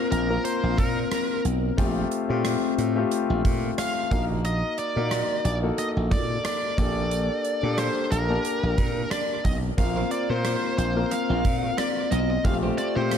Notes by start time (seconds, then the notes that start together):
Already playing: A#3 C4 F4 A#4
0.11 A#1 A#4, closed hi-hat
0.29 A#3 C4 F4 A#4
0.45 C5, closed hi-hat
0.63 A#1
0.78 A#2 A#4, kick, closed hi-hat
1.11 cross-stick, closed hi-hat
1.45 B1, closed hi-hat
1.77 A#1 A3 C4 F4 G4, kick, closed hi-hat
2.11 closed hi-hat
2.29 A#2 A3 C4 F4 G4
2.45 cross-stick, closed hi-hat
2.78 A2, closed hi-hat
2.96 A3 C4 F4 G4
3.11 closed hi-hat
3.30 A#1
3.45 A#2, kick, closed hi-hat
3.78 F5, cross-stick, closed hi-hat
4.11 A#1 A#3 D#4 F#4 A#4 F5, kick, closed hi-hat
4.45 D#5, closed hi-hat
4.78 D5, closed hi-hat
4.96 A#2 A#3 D#4 F#4 A#4
5.11 cross-stick, closed hi-hat
5.45 A#1 D5, closed hi-hat
5.62 A#3 D#4 F#4 A4
5.78 D#5, closed hi-hat
5.97 A#1
6.11 A#2 D5, kick, closed hi-hat
6.45 D5, cross-stick, closed hi-hat
6.77 A#1 A#3 D4 G4 A4 D5, kick, closed hi-hat
7.11 closed hi-hat
7.45 closed hi-hat
7.63 A#2 A#3 D4 G4 A4
7.78 C5, cross-stick, closed hi-hat
8.12 A#1 A#4, closed hi-hat
8.29 A#3 D4 G4 A5
8.45 closed hi-hat
8.63 A#1
8.78 A#2, kick, closed hi-hat
9.11 D5, cross-stick, closed hi-hat
9.45 B1 D#5, kick, closed hi-hat
9.77 A#1 A#3 C4 F4 A#4 F5, muted clean electric guitar stroke, kick, closed hi-hat
9.96 C4 F4 A#4 C5
10.11 C4 F4 A#4 C5 D5, closed hi-hat
10.29 A#2 A#3 C4 F4 A#4 C5, muted clean electric guitar stroke
10.44 muted clean electric guitar stroke, cross-stick, closed hi-hat
10.63 muted clean electric guitar stroke
10.78 A#1 C5, closed hi-hat
10.95 A#3 C4 F4 A#4, muted clean electric guitar stroke
11.11 F5, muted clean electric guitar stroke, closed hi-hat
11.29 A#1 C4 F4 A#4 C5
11.45 A#2, muted clean electric guitar stroke, kick, closed hi-hat
11.63 muted clean electric guitar stroke
11.78 D5, muted clean electric guitar stroke, cross-stick, closed hi-hat
11.96 muted clean electric guitar stroke
12.11 B1 C4 F4 A#4 C5 D#5, closed hi-hat
12.29 muted clean electric guitar stroke
12.45 A#1 A3 C4 F4 G4 F5, muted clean electric guitar stroke, kick, closed hi-hat
12.63 A3 C4 G4 C5
12.78 A3 C4 G4 C5 D5, closed hi-hat
12.96 A#2 A3 C4 F4 G4 C5, muted clean electric guitar stroke
13.11 muted clean electric guitar stroke, cross-stick, closed hi-hat